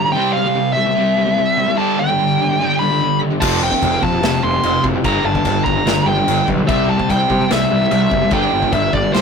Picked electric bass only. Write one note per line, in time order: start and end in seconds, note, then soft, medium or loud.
3.42 3.69 F1 medium
3.82 3.96 F1 loud
4.03 4.16 F2 medium
4.22 4.36 F1 loud
4.43 4.57 F1 medium
4.63 4.77 F1 medium
4.83 4.97 F#1 medium
5.04 5.18 G1 loud
5.24 5.38 G1 medium
5.45 5.59 G1 loud
5.67 5.80 G1 loud
5.85 5.99 G1 medium
6.06 6.20 G1 medium
6.27 6.41 G1 medium
6.48 6.62 B1 medium
6.69 6.96 C2 loud
7.10 7.23 C2 medium
7.31 7.44 C3 medium
7.52 7.65 C2 loud
7.72 7.85 C2 medium
7.92 8.05 C2 loud
8.12 8.25 F#1 medium
8.32 8.45 G1 loud
8.53 8.66 G1 medium
8.73 8.86 G1 medium
8.93 9.06 G1 medium
9.14 9.21 C2 medium